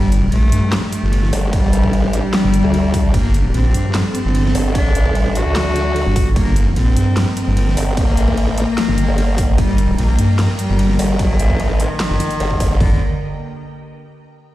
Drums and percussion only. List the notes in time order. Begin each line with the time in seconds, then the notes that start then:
0.12 closed hi-hat
0.32 ride
0.52 closed hi-hat
0.72 snare, clap, ride
0.93 closed hi-hat
1.13 ride
1.23 snare
1.33 open hi-hat
1.53 kick, ride
1.73 closed hi-hat
1.84 kick
1.93 ride
2.13 closed hi-hat
2.33 snare, clap, ride
2.54 closed hi-hat
2.74 ride
2.94 kick, open hi-hat
3.14 kick, ride
3.34 closed hi-hat
3.54 ride
3.74 closed hi-hat
3.95 snare, clap, ride
4.15 closed hi-hat
4.35 ride
4.45 snare
4.55 open hi-hat
4.75 kick, ride
4.95 closed hi-hat
5.06 kick
5.15 ride
5.35 closed hi-hat
5.56 snare, clap, ride
5.76 snare, closed hi-hat
5.96 ride
6.16 kick, open hi-hat
6.36 kick, ride
6.56 closed hi-hat
6.76 ride
6.97 closed hi-hat
7.17 snare, clap, ride
7.37 closed hi-hat
7.57 ride
7.67 snare
7.77 open hi-hat
7.97 kick, ride
8.17 closed hi-hat
8.28 kick
8.37 ride
8.58 closed hi-hat
8.78 snare, clap, ride
8.98 closed hi-hat
9.18 ride
9.38 kick, open hi-hat
9.58 kick, ride
9.78 closed hi-hat
9.98 ride
10.19 closed hi-hat
10.39 snare, clap, ride
10.59 closed hi-hat
10.79 ride
10.89 snare
10.99 open hi-hat
11.19 kick, ride
11.39 closed hi-hat
11.50 kick
11.60 ride
11.80 closed hi-hat
12.00 snare, clap, ride
12.20 snare, closed hi-hat
12.31 closed hi-hat
12.40 ride
12.51 kick
12.60 kick, open hi-hat
12.80 kick, floor tom, open hi-hat